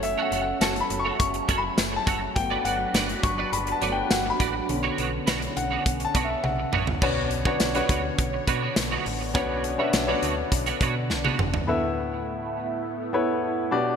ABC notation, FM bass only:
X:1
M:4/4
L:1/8
Q:1/4=103
K:Bm
V:1 name="FM bass" clef=bass
F,,, F,,, F,,, F,,, F,,, F,,, F,,, F,,, | G,,, G,,, G,,, G,,, G,,, G,,, G,,, A,,, | B,,, B,,, B,,, B,,, B,,, B,,, B,,, A,,, | B,,,2 B,,, D,, B,,, B,, B,,, A,,, |
B,,,2 B,,, D,, B,,, B,, B,,, G,,, | z8 |]